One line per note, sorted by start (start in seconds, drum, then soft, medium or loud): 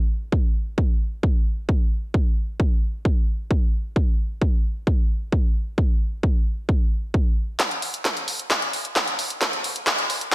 0.32 kick loud
0.78 kick loud
1.23 kick loud
1.69 kick loud
2.14 kick loud
2.60 kick loud
3.05 kick loud
3.51 kick loud
3.96 kick loud
4.42 kick loud
4.87 kick loud
5.32 kick loud
5.78 kick loud
6.23 kick loud
6.69 kick loud
7.14 kick loud
7.60 kick loud
7.60 clap soft
7.60 closed hi-hat medium
7.71 closed hi-hat medium
7.82 open hi-hat loud
7.94 closed hi-hat medium
8.05 kick loud
8.05 clap medium
8.05 closed hi-hat medium
8.17 closed hi-hat medium
8.28 open hi-hat loud
8.39 closed hi-hat medium
8.50 kick loud
8.50 clap medium
8.50 closed hi-hat medium
8.62 closed hi-hat medium
8.73 open hi-hat loud
8.85 closed hi-hat medium
8.96 kick loud
8.96 clap medium
8.96 closed hi-hat medium
9.08 closed hi-hat medium
9.19 open hi-hat loud
9.30 closed hi-hat medium
9.41 kick loud
9.41 clap medium
9.41 closed hi-hat medium
9.53 closed hi-hat medium
9.64 open hi-hat loud
9.76 closed hi-hat medium
9.87 kick loud
9.87 clap medium
9.87 closed hi-hat medium
9.98 closed hi-hat medium
10.10 open hi-hat loud
10.21 closed hi-hat medium